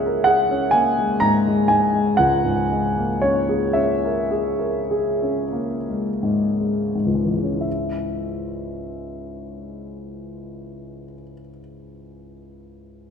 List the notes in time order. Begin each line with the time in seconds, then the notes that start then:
Already playing: C#2 G#2 G#3 A#3 C#4 G#4 A#4 C#5 E5 F#5
0.06 A#4
0.24 G#4 F#5
0.51 C#4
0.71 A#3 G#5
0.98 G#3
1.20 G#2 A#5
1.47 G#3
1.68 G#2 G#5
1.94 G#3
2.17 C#2 F#5
2.44 G#2
2.71 G#3
2.98 A#3
3.22 C#4 C#5
3.49 G#4
3.73 C#4 E5
4.04 A#4
4.31 G#4
4.59 A#4
4.91 G#4
5.22 C#4
5.53 A#3
5.89 G#3
6.23 G#2
6.59 G#3
6.95 G#2
7.06 C#2
7.15 G#2
7.24 E3
7.34 G#3
7.44 C#4
7.52 E4
7.61 E5